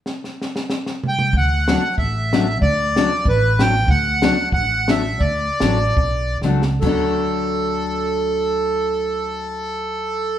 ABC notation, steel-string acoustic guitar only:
X:1
M:2/4
L:1/8
Q:"Swing" 1/4=92
K:D
V:1 name="Steel-string acoustic guitar"
z4 | z [F,A,D] z [F,A,D] | z [F,A,D] z [F,A,D] | z [F,A,D] z [F,A,D] |
z [F,A,D] z [F,A,D] | [F,A,D]4- | [F,A,D]4 |]